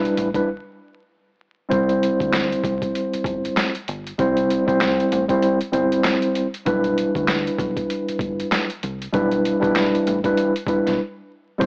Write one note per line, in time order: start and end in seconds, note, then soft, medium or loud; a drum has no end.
0.00 0.28 G3 medium
0.00 0.28 D4 medium
0.00 0.28 E4 medium
0.00 0.29 B4 loud
0.05 closed hi-hat soft
0.17 0.40 A1 medium
0.17 closed hi-hat medium
0.34 0.47 G3 medium
0.34 0.48 D4 medium
0.34 0.48 E4 medium
0.34 0.48 B4 loud
0.34 kick medium
0.34 closed hi-hat medium
1.69 2.09 C2 loud
1.69 3.72 G3 loud
1.69 3.72 C4 medium
1.69 3.72 E4 medium
1.69 3.73 C5 loud
1.69 kick loud
1.69 closed hi-hat medium
1.89 closed hi-hat medium
2.03 closed hi-hat medium
2.20 2.54 D2 medium
2.20 kick medium
2.20 closed hi-hat soft
2.33 snare loud
2.33 clap loud
2.33 closed hi-hat medium
2.52 closed hi-hat soft
2.64 2.87 C2 loud
2.64 kick loud
2.64 closed hi-hat medium
2.82 kick medium
2.82 closed hi-hat medium
2.95 closed hi-hat medium
3.13 muted fingered electric bass stroke medium
3.13 closed hi-hat medium
3.24 3.48 G1 medium
3.24 kick loud
3.24 closed hi-hat medium
3.45 closed hi-hat medium
3.57 snare loud
3.57 clap medium
3.57 closed hi-hat loud
3.75 closed hi-hat medium
3.88 4.12 G1 loud
3.88 closed hi-hat medium
4.07 closed hi-hat soft
4.18 4.56 C2 loud
4.18 4.63 G3 loud
4.18 4.64 C4 medium
4.18 4.64 E4 medium
4.18 4.64 C5 loud
4.18 kick loud
4.18 closed hi-hat medium
4.37 closed hi-hat medium
4.50 closed hi-hat medium
4.66 5.01 C2 medium
4.66 5.23 G3 medium
4.66 5.24 C4 medium
4.66 5.24 E4 medium
4.66 5.24 C5 loud
4.66 kick loud
4.66 closed hi-hat medium
4.80 snare loud
4.80 clap loud
4.80 closed hi-hat medium
5.00 closed hi-hat soft
5.12 5.35 A1 loud
5.12 closed hi-hat medium
5.29 5.57 G3 loud
5.29 5.58 C4 medium
5.29 5.58 E4 medium
5.29 5.58 C5 loud
5.29 kick medium
5.29 closed hi-hat medium
5.42 closed hi-hat medium
5.61 muted fingered electric bass stroke medium
5.61 closed hi-hat medium
5.72 5.97 G1 medium
5.72 6.46 G3 medium
5.72 6.46 C4 medium
5.72 6.46 E4 medium
5.72 6.47 C5 loud
5.72 closed hi-hat medium
5.92 closed hi-hat medium
6.04 snare loud
6.04 clap loud
6.04 closed hi-hat loud
6.22 closed hi-hat medium
6.35 closed hi-hat medium
6.54 closed hi-hat medium
6.65 7.04 B1 loud
6.65 8.68 G3 medium
6.65 8.68 D4 medium
6.65 8.68 E4 medium
6.65 8.68 B4 loud
6.65 kick loud
6.65 closed hi-hat medium
6.84 closed hi-hat medium
6.98 closed hi-hat medium
7.15 7.48 D2 medium
7.15 kick medium
7.15 closed hi-hat soft
7.28 snare loud
7.28 clap loud
7.28 closed hi-hat medium
7.47 closed hi-hat medium
7.59 7.82 B1 loud
7.59 kick loud
7.59 closed hi-hat medium
7.77 kick medium
7.77 closed hi-hat medium
7.90 closed hi-hat medium
8.08 muted fingered electric bass stroke medium
8.08 closed hi-hat medium
8.19 8.43 G1 medium
8.19 kick loud
8.19 closed hi-hat medium
8.40 closed hi-hat medium
8.52 snare loud
8.52 clap medium
8.52 closed hi-hat loud
8.70 closed hi-hat medium
8.83 9.07 C2 loud
8.83 closed hi-hat medium
9.02 closed hi-hat medium
9.13 9.51 B1 loud
9.13 9.58 G3 loud
9.13 9.58 D4 medium
9.13 9.59 E4 medium
9.13 9.59 B4 loud
9.13 kick loud
9.13 closed hi-hat medium
9.32 closed hi-hat medium
9.45 closed hi-hat medium
9.60 9.96 B1 medium
9.60 10.18 G3 medium
9.60 10.18 D4 medium
9.60 10.18 E4 medium
9.60 10.19 B4 loud
9.60 kick loud
9.64 closed hi-hat soft
9.75 snare loud
9.75 clap loud
9.75 closed hi-hat medium
9.95 closed hi-hat medium
10.07 10.30 A1 loud
10.07 closed hi-hat medium
10.24 10.52 G3 medium
10.24 10.53 D4 medium
10.24 10.53 E4 medium
10.24 10.53 B4 loud
10.24 kick medium
10.24 closed hi-hat medium
10.37 closed hi-hat medium
10.56 closed hi-hat medium
10.67 10.81 G1 medium
10.67 10.99 G3 medium
10.67 10.99 D4 medium
10.67 10.99 E4 medium
10.67 11.00 B4 loud
10.67 kick loud
10.67 closed hi-hat medium
10.87 10.97 B1 loud
10.87 snare soft
10.87 closed hi-hat medium
11.58 11.66 C2 loud
11.58 11.66 G3 loud
11.58 11.66 C4 medium
11.58 11.66 E4 medium
11.58 11.66 C5 loud
11.58 kick loud
11.58 closed hi-hat medium